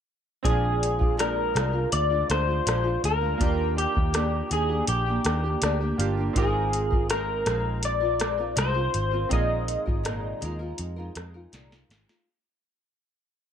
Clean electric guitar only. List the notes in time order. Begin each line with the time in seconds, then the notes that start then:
0.45 G#4
1.19 A#4
1.93 D5
2.31 C5
3.05 A#4
3.78 G4
4.53 G#4
4.89 G4
6.38 G#4
7.11 A#4
7.85 D5
8.58 C5
9.33 D#5